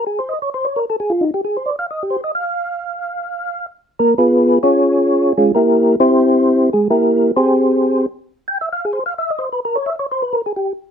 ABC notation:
X:1
M:4/4
L:1/16
Q:"Swing" 1/4=132
K:Dblyd
V:1 name="Tonewheel organ"
A c e d c d B =A _A F E G A c =d f | e G c e f12 | z2 [B,B]2 [_CFA_c]4 [DFAd]6 [A,DFA]2 | [B,=EGB]4 [CEGc]6 [A,A]2 [B,EGB]4 |
[CGAc]6 z4 g =e f A c f | =e _e c =B _B d =e d c =B _B A G2 z2 |]